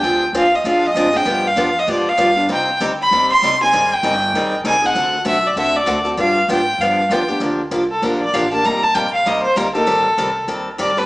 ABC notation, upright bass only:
X:1
M:4/4
L:1/8
Q:"Swing" 1/4=195
K:Gphr
V:1 name="Upright bass" clef=bass
D,,2 E,,2 F,,2 A,,2 | G,,2 F,,2 A,,2 G,,2 | C,,2 D,,2 E,,2 C,,2 | A,,,2 G,,,2 =B,,,2 C,,2 |
D,,2 =B,,,2 C,,2 D,,2 | G,,2 A,,2 G,,2 F,,2 | [K:Gm] D,,2 C,,2 B,,,2 A,,,2 | G,,,2 B,,,2 E,,2 D,,2 |
A,,,2 C,,2 E,,2 G,,2 |]